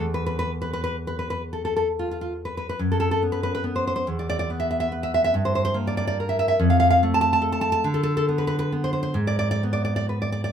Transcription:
nylon-string guitar
0.00 E2
0.14 B4
0.26 B4
0.39 B4
0.62 B4
0.73 B4
0.84 B4
1.07 B4
1.19 B4
1.30 B4
1.53 A4
1.65 A4
1.76 A4
1.99 F4
2.11 F4
2.21 F4
2.45 B4
2.57 B4
2.69 B4
2.79 F#2
2.92 A4
3.00 A4
3.11 A4
3.23 B3
3.32 B4
3.43 B4
3.55 B4
3.64 B3
3.76 C5
3.87 C5
3.96 C5
4.07 E2
4.19 D5
4.29 D5
4.39 D5
4.50 B3
4.60 E5
4.71 E5
4.80 E5
4.92 B4
5.03 E5
5.14 E5
5.24 E5
5.34 G2
5.45 C5
5.55 C5
5.65 C5
5.74 A#3
5.87 D5
5.97 D5
6.07 D5
6.20 A#4
6.29 E5
6.39 E5
6.48 E5
6.59 F2
6.70 F5
6.80 F5
6.90 F5
7.03 A3
7.14 A5
7.21 A5
7.33 A5
7.42 A4
7.52 A5
7.61 A5
7.72 A5
7.84 D3
7.94 A4
8.03 A4
8.17 A4
8.29 B3
8.38 B4
8.47 B4
8.59 B4
8.72 B3
8.84 C5
8.93 C5
9.03 C5
9.14 G#2
9.27 D5
9.39 D5
9.51 D5
9.63 B3
9.73 D5
9.85 D5
9.96 D5
10.09 B4
10.22 D5
10.32 D5
10.44 D5

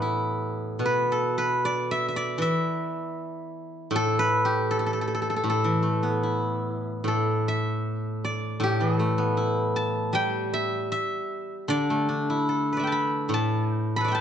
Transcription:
guzheng
Already playing: A2 E3 A3 B3 G4 A4 B4
0.02 E4
0.79 B2
0.86 B4
1.12 A4
1.38 B4
1.65 D5
1.91 E5
2.08 E5
2.16 D5
2.38 E3 E5
3.91 A2
3.96 A4
4.19 B4
4.45 G4
4.71 A4
4.79 A4
4.86 A4
4.93 A4
5.01 A4
5.08 A4
5.14 A4
5.22 A4
5.30 A4
5.36 A4
5.44 A2
5.50 A4
5.64 E3
5.83 A3
6.03 B3
6.23 E4
7.04 A2 A4
7.48 E5
8.24 D5
8.60 A2 G4
8.81 E3 G#4
8.96 A3 A4
9.18 B3
9.37 E4
9.76 A5
10.13 G3 G5
10.54 E5
10.92 E5
11.68 D3 D5
11.90 A3
12.09 D4
12.30 E4
12.49 A4
12.73 B4
12.77 D5 E5
12.83 G5 A5
12.92 B5
13.29 A2
13.34 A5
13.71 G5
13.96 A4 B5
14.01 B4 D5
14.08 E5 G5
14.15 A5

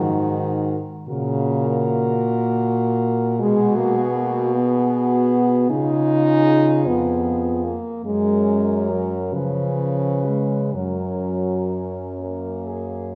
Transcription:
french horn
Already playing: G#2 D#3 F#4 A#4
1.08 A#2 C#3 F#4 A#4
3.39 B2 G#3 F#4 G#4
3.77 A#3
3.97 B3
4.16 A#3
4.54 B3 F#4 G#4
5.70 C#3 D#4 F4 G#4
6.87 F2 B3
7.65 A#3
8.05 F#2 G#3 C#4 A#4
8.90 F#3
9.33 C#3 F3 C#4 B4
10.26 G#3
10.74 F#2 F#3 C#4 A#4
12.19 A#3 A#4
12.68 G#4

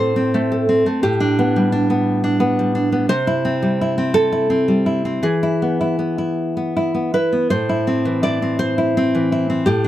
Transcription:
nylon-string guitar
Already playing: A2 A3 C4 A4 C5
0.16 C4
0.34 A3
0.52 A4
0.69 C4
0.86 A3
1.03 A2 G4
1.20 D4
1.39 B3
1.56 G3
1.72 D4
1.90 B3
2.24 D4
2.40 B3
2.59 G3
2.75 D4
2.92 B3
3.09 C3 C5
3.27 E4
3.45 C4
3.62 G3
3.81 E4
3.98 C4
4.14 A4
4.32 E4
4.50 C4
4.68 G3
4.86 E4
5.05 C4
5.23 E3 G#4
5.43 E4
5.62 B3
5.81 E4
5.99 B3
6.18 E4
6.57 B3
6.77 E4
6.94 B3
7.14 E4 B4
7.33 B3
7.50 A2 C5
7.69 E4
7.87 C4
8.05 E3
8.23 E4 D5
8.42 C4
8.59 C5
8.78 E4
8.97 C4
9.15 E3
9.32 E4
9.50 C4
9.66 A2 G4
9.84 D4

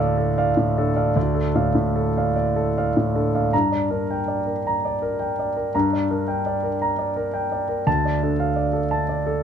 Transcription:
grand piano
Already playing: D2 A2 D4 A4 F5
0.00 D5
0.18 A4
0.38 D5 F5
0.57 A2
0.78 D4 A4
0.96 D5 F5
1.16 D2 D5
1.34 A4
1.55 A2 D5 F5
1.75 A2
1.96 A4
2.17 D5 F5
2.36 D5
2.56 A4
2.78 D5 F5
2.97 A2
3.15 D4 A4
3.35 D5 F5
3.53 G2 A#5
3.72 D5
3.90 D4 A#4
4.11 G5
4.28 D5
4.46 A#4
4.67 A#5
4.85 D5
5.02 A#4
5.19 G5
5.39 D5
5.56 A#4
5.75 G2 A#5
5.93 D5
6.11 D4 A#4
6.28 G5
6.46 D5
6.63 A#4
6.82 A#5
6.98 D5
7.16 A#4
7.34 G5
7.52 D5
7.68 A#4
7.87 D2 A5
8.05 D5
8.23 D4 A4
8.40 F5
8.56 D5
8.73 A4
8.91 A5
9.09 D5
9.27 A4

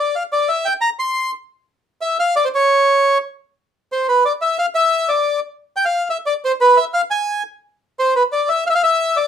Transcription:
bandoneon
0.00 D5
0.15 F5
0.32 D5
0.48 E5
0.65 G5
0.81 A#5
0.99 C6
2.01 E5
2.20 F5
2.36 D5
2.45 C5
2.55 C#5
3.92 C5
4.08 B4
4.25 D5
4.41 E5
4.59 F5
4.75 E5
5.09 D5
5.76 G5
5.85 F5
6.10 E5
6.26 D5
6.45 C5
6.61 B4
6.77 E5
6.94 F5
7.11 G#5
7.99 C5
8.16 B4
8.32 D5
8.49 E5
8.70 E5
8.75 F5
8.83 E5
9.16 D5

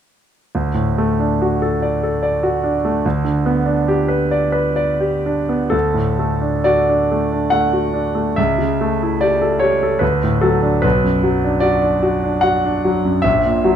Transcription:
grand piano
0.55 D2
0.74 A2
0.98 A3
1.20 D4
1.42 F#4
1.62 A4
1.82 D5
2.03 A4
2.23 D5
2.43 F#4
2.64 D4
2.85 A3
3.06 D2
3.25 D3
3.46 B3
3.66 D4
3.88 G4
4.08 B4
4.31 D5
4.52 B4
4.76 D5
5.00 G4
5.26 D4
5.49 B3
5.70 D2 A4
5.94 A2
6.19 A3
6.41 D4
6.64 F#4 D5
6.89 D4
7.12 A3
7.32 D4
7.50 A3 F#5
7.73 F#4
7.94 D4
8.15 A3
8.36 C#2 E5
8.58 C#3
8.81 A3
9.03 E4
9.21 G4 D5
9.42 A4
9.59 G4 C#5
9.83 A4
9.99 D2 B4
10.23 A2
10.41 F#3 A4
10.62 D4
10.82 B1 B4
11.04 F#2
11.23 F#3
11.44 D4
11.60 F#4 D5
11.82 D4
12.03 F#4
12.24 D4
12.41 F#4 F#5
12.65 D4
12.85 F#3
13.05 F#2
13.22 A#1 E5
13.46 A#2
13.64 F#3

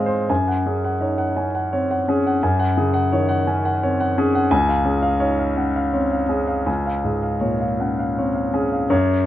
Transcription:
grand piano
Already playing: G#2 G#3 C4 G#4 C5 C#5 F5 G#5
0.06 C5
0.30 F#2 G#5
0.48 F#5
0.66 C#4 G#4
0.84 F#5
1.01 D#4 C#5
1.18 F#5
1.37 C#4 G#5
1.55 F#5
1.73 C4 C#5
1.91 F#5
2.08 C#4 G#4
2.27 F#5
2.43 F#2 G#5
2.59 F#5
2.77 C#3 G#4
2.94 F#5
3.13 D#3 C#5
3.29 F#5
3.47 C#4 G#5
3.65 F#5
3.83 C4 C#5
4.00 F#5
4.18 C#4 G#4
4.35 F#5
4.51 C#2 G#5
4.69 F5
4.85 C#4 G#4
5.03 F5
5.20 D#4 C#5
5.39 F5
5.57 C#4 F#5
5.76 F5
5.93 C4 C#5
6.12 F5
6.29 C#4 G#4
6.48 F5
6.66 C#2 G#5
6.86 F5
7.04 G#2 G#4
7.23 F5
7.41 A#2 C#5
7.60 F5
7.80 C#4 F#5
7.99 F5
8.18 C4 C#5
8.35 F5
8.54 C#4 G#4
8.73 F5
8.90 F#2 C#5

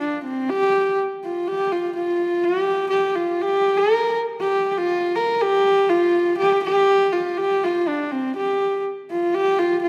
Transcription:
horsehead fiddle
0.00 D4
0.24 C4
0.50 G4
1.24 F4
1.48 G4
1.72 F4
1.96 F4
2.44 G4
2.90 G4
3.15 F4
3.42 G4
3.77 A#4
4.40 G4
4.71 G4
4.78 F4
5.15 A#4
5.41 G4
5.89 F4
6.38 G4
6.63 G4
7.12 F4
7.38 G4
7.63 F4
7.88 D4
8.11 C4
8.36 G4
9.11 F4
9.34 G4
9.58 F4
9.82 F4

